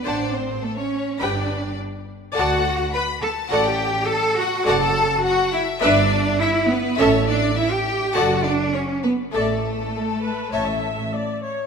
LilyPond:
<<
  \new Staff \with { instrumentName = "Violin section" } { \time 4/4 \key g \lydian \tempo 4 = 104 <fis'' a''>8 r4. <g'' b''>8 r4. | \key d \major <fis'' a''>8 r4. <fis'' a''>8 r4. | <fis'' a''>8 r4. e''8 r4. | <e'' a''>8 r4. <fis'' a''>8 r4. |
<e'' a''>8 r4. <e'' a''>8 r4. | }
  \new Staff \with { instrumentName = "Violin section" } { \time 4/4 \key g \lydian d''8 c''8 a'16 cis''8. d''4 r4 | \key d \major fis''4 b''8 a''8 fis''16 g''8. a''8 fis''8 | fis''16 a''8. fis''8 e''8 d''4 e''8 b'8 | cis''8 d''8 e''16 g''8. fis''8 d''8 cis''8 b'8 |
a'2. r4 | }
  \new Staff \with { instrumentName = "Viola section" } { \time 4/4 \key g \lydian c''8 r4. <g' b'>8 r4. | \key d \major <a' d''>8 r4. <a' d''>8 r4. | <a' d''>8 r4. <b' e''>8 r4. | <a' e''>8 r4. <a' d''>8 r4. |
<a' d''>8 r8 a'8 b'8 cis''16 e''8. d''8 cis''8 | }
  \new Staff \with { instrumentName = "Cello section" } { \time 4/4 \key g \lydian d'8 c'8 a16 cis'8. d'4 r4 | \key d \major fis'4 b'8 a'8 fis'16 g'8. a'8 fis'8 | fis'16 a'8. fis'8 e'8 d'4 e'8 b8 | cis'8 d'8 e'16 g'8. fis'8 d'8 cis'8 b8 |
a2. r4 | }
  \new Staff \with { instrumentName = "Double bass section" } { \clef bass \time 4/4 \key g \lydian a,,4 r4 g,,4 r4 | \key d \major d,4 r4 a,,4 r4 | fis,,4 r4 g,,4 r4 | a,,4 r4 fis,,4 r4 |
a,,4 r4 a,,4 r4 | }
>>